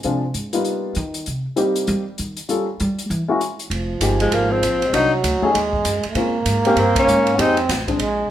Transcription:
0.03 upright bass C3, grand piano F3 G#3 C4 D4 F4, closed hi-hat
0.34 upright bass G#2, closed hi-hat
0.53 grand piano G3 A#3 B3 D#4 F4, closed hi-hat
0.65 closed hi-hat
0.95 upright bass D#3, closed hi-hat
1.14 closed hi-hat
1.26 upright bass C3, closed hi-hat
1.56 grand piano G3 A#3 C4 D#4 G4, closed hi-hat
1.76 closed hi-hat
1.87 upright bass G3, closed hi-hat
2.18 upright bass D#3, closed hi-hat
2.37 closed hi-hat
2.49 grand piano G3 A#3 C#4 F4 A4, closed hi-hat
2.80 upright bass G3, closed hi-hat
2.99 closed hi-hat
3.10 upright bass E3, closed hi-hat
3.28 grand piano G#3 A#3 C#4 E4 F#4
3.41 closed hi-hat
3.59 closed hi-hat
3.70 upright bass F1, trombone F3, kick, ride
4.00 upright bass G1, grand piano G#3 A#3 D#4 G4, kick, hi-hat pedal, ride
4.20 tenor saxophone G#3, ride
4.32 upright bass G#1, tenor saxophone A#3, kick, ride
4.52 tenor saxophone C4
4.63 upright bass A#1, kick, hi-hat pedal, ride
4.82 ride
4.86 trombone G#3
4.92 upright bass C2, trombone F#3, grand piano A#3 D4 D#4 F#4, tenor saxophone D#4, kick, ride
5.24 upright bass D2, kick, hi-hat pedal, ride
5.42 grand piano A3 C#4 D#4 G#4, muted upright bass stroke
5.52 upright bass D#2, trombone G#3, kick, ride
5.73 kick
5.85 upright bass F#2, kick, hi-hat pedal, ride
6.03 muted upright bass stroke, ride
6.09 trombone A3
6.15 upright bass A#2, grand piano G#3 C4 C#4 F4, trombone A#3, kick, ride
6.46 upright bass G#2, kick, hi-hat pedal, ride
6.65 grand piano G#3 C4 C#4 G4, tenor saxophone A#3, ride
6.76 upright bass G2, tenor saxophone C4, kick, ride
6.96 tenor saxophone C#4, kick, ride
7.07 upright bass G#2, hi-hat pedal
7.27 ride
7.37 upright bass F2, grand piano G#3 C4 D#4 G4, trombone C4, tenor saxophone D#4, kick, ride
7.57 ride
7.69 upright bass A1, kick, snare, hi-hat pedal, ride
7.87 grand piano G#3 C4 D4 G#4, kick, ride
7.99 upright bass A#1, trombone G#3, kick, ride

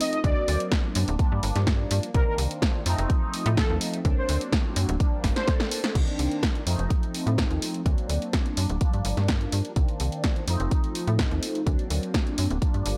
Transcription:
Already playing: analog polysynth F3 A3 C4 D#4
0.01 analog polysynth D#5, open hi-hat
0.13 analog polysynth D#5, closed hi-hat
0.23 fm bass D2, analog polysynth F#3 A#3 C4 D4 D5, kick, closed hi-hat
0.48 fm bass D2, open hi-hat
0.60 closed hi-hat
0.72 kick, snare, closed hi-hat
0.95 fm bass F#2, open hi-hat
1.08 fm bass D1, closed hi-hat
1.18 analog polysynth F3 G3 A#3 D4, kick, closed hi-hat
1.32 fm bass G2
1.43 fm bass G1, open hi-hat
1.56 fm bass G2, snare, closed hi-hat
1.67 kick, snare, closed hi-hat
1.91 fm bass G2, open hi-hat
2.03 closed hi-hat
2.14 fm bass C2, analog polysynth D#3 A#3 C4 D4 A#4, kick, closed hi-hat
2.27 analog polysynth A#4
2.38 fm bass C2, open hi-hat
2.51 closed hi-hat
2.62 kick, snare, closed hi-hat
2.85 fm bass F2, analog polysynth F3 A3 C4 D#4, open hi-hat
2.98 fm bass F1, closed hi-hat
3.10 kick, closed hi-hat
3.34 open hi-hat
3.46 fm bass A2, closed hi-hat
3.57 analog polysynth A4, kick, snare, closed hi-hat
3.70 fm bass D#2
3.81 open hi-hat
3.94 closed hi-hat
4.04 fm bass D2, analog polysynth F#3 A#3 C4 D4, kick, closed hi-hat
4.18 analog polysynth C5
4.29 fm bass D2, open hi-hat
4.41 closed hi-hat
4.52 kick, snare, closed hi-hat
4.76 fm bass F#2, open hi-hat
4.89 fm bass D1, closed hi-hat
5.00 analog polysynth F3 G3 A#3 D4, kick, closed hi-hat
5.24 fm bass G1, kick, snare, open hi-hat
5.36 analog polysynth C5, snare, closed hi-hat
5.48 analog polysynth A#3 C4 D4 A4, kick, snare, closed hi-hat
5.60 snare
5.71 open hi-hat
5.84 snare, closed hi-hat
5.95 fm bass C2, analog polysynth D#3 A#3 C4 D4, kick, closed hi-hat, crash
6.08 closed hi-hat
6.19 fm bass C2, open hi-hat
6.32 closed hi-hat
6.43 kick, snare, closed hi-hat
6.55 closed hi-hat
6.66 fm bass F2, analog polysynth F3 A3 C4 D#4, open hi-hat
6.79 fm bass F1, closed hi-hat
6.90 kick, closed hi-hat
7.03 closed hi-hat
7.14 open hi-hat
7.26 fm bass A2, closed hi-hat
7.38 kick, snare, closed hi-hat
7.50 fm bass D#2, closed hi-hat
7.62 open hi-hat
7.74 closed hi-hat
7.85 fm bass D2, analog polysynth F#3 A#3 C4 D4, kick, closed hi-hat
7.98 closed hi-hat
8.09 fm bass D2, open hi-hat
8.22 closed hi-hat
8.33 kick, snare, closed hi-hat
8.46 closed hi-hat
8.57 fm bass F#2, open hi-hat
8.70 fm bass D1, closed hi-hat
8.80 analog polysynth F3 G3 A#3 D4, kick, closed hi-hat
8.94 fm bass G2, closed hi-hat
9.05 fm bass G1, open hi-hat
9.17 fm bass G2, snare, closed hi-hat
9.28 kick, snare, closed hi-hat
9.41 closed hi-hat
9.52 fm bass G2, open hi-hat
9.65 closed hi-hat
9.75 fm bass C2, analog polysynth D#3 A#3 C4 D4, kick, closed hi-hat
9.88 closed hi-hat
10.00 fm bass C2, open hi-hat
10.12 closed hi-hat
10.24 kick, snare, closed hi-hat
10.36 closed hi-hat
10.47 fm bass F2, analog polysynth F3 A3 C4 D#4, open hi-hat
10.60 fm bass F1, closed hi-hat
10.71 kick, closed hi-hat
10.84 closed hi-hat
10.95 open hi-hat
11.07 fm bass A2, closed hi-hat
11.19 kick, snare, closed hi-hat
11.31 fm bass D#2, closed hi-hat
11.43 open hi-hat
11.55 closed hi-hat
11.65 fm bass D2, analog polysynth F#3 A#3 C4 D4, kick, closed hi-hat
11.79 closed hi-hat
11.90 fm bass D2, open hi-hat
12.03 closed hi-hat
12.14 kick, snare, closed hi-hat
12.27 closed hi-hat
12.38 fm bass F#2, open hi-hat
12.50 fm bass D1, closed hi-hat
12.61 analog polysynth F3 G3 A#3 D4, kick, closed hi-hat
12.74 fm bass G2, closed hi-hat
12.86 fm bass G1, open hi-hat

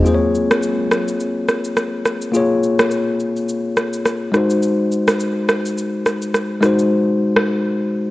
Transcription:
Already playing: tine electric piano C4
0.03 tine electric piano A#3 F4 G#4, shaker
0.08 tine electric piano C5
0.14 tine electric piano C#5
0.35 shaker
0.51 cross-stick, shaker
0.63 shaker
0.91 cross-stick, shaker
1.08 shaker
1.20 shaker
1.49 cross-stick, shaker
1.65 shaker
1.77 cross-stick, shaker
2.06 cross-stick, shaker
2.22 shaker
2.32 tine electric piano A#3 F4 G#4, shaker
2.37 tine electric piano C#5
2.63 shaker
2.79 cross-stick, shaker
2.91 shaker
3.20 shaker
3.37 shaker
3.49 shaker
3.77 cross-stick, shaker
3.93 shaker
4.06 cross-stick, shaker
4.32 tine electric piano G#3 D#4 F#4, cross-stick, shaker
4.37 tine electric piano C5
4.50 shaker
4.63 shaker
4.92 shaker
5.08 cross-stick, shaker
5.20 shaker
5.49 cross-stick, shaker
5.65 shaker
5.78 shaker
6.06 cross-stick, shaker
6.22 shaker
6.34 cross-stick, shaker
6.61 tine electric piano G#3 D#4 F#4, cross-stick, shaker
6.66 tine electric piano C5
6.79 shaker
7.36 cross-stick

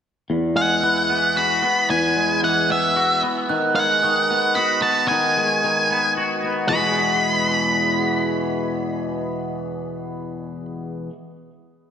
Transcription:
0.30 clean electric guitar E2
0.56 clean electric guitar G#3, lead electric guitar F#5
0.83 clean electric guitar E3
1.10 clean electric guitar B3
1.36 clean electric guitar F#4, lead electric guitar B5
1.62 clean electric guitar B3
1.90 clean electric guitar E2, lead electric guitar G#5
2.16 clean electric guitar G#3
2.43 clean electric guitar E3, lead electric guitar F#5
2.70 clean electric guitar B3, lead electric guitar E5
2.96 clean electric guitar F#4
3.23 clean electric guitar B3
3.49 clean electric guitar D#3, glockenspiel F#6
3.75 clean electric guitar G#3, lead electric guitar F#5
4.03 clean electric guitar D#3, glockenspiel D#6
4.31 clean electric guitar B3
4.55 clean electric guitar F#4, lead electric guitar B5, glockenspiel D#6
4.82 clean electric guitar B3, lead electric guitar A5
5.08 clean electric guitar D#3, lead electric guitar G#5
5.37 clean electric guitar G#3
5.64 clean electric guitar D#3
5.91 clean electric guitar B3
6.17 clean electric guitar F#4
6.44 clean electric guitar B3
6.69 clean electric guitar E2 B2 E3 G#3 B3, lead electric guitar B5
6.73 clean electric guitar F#4

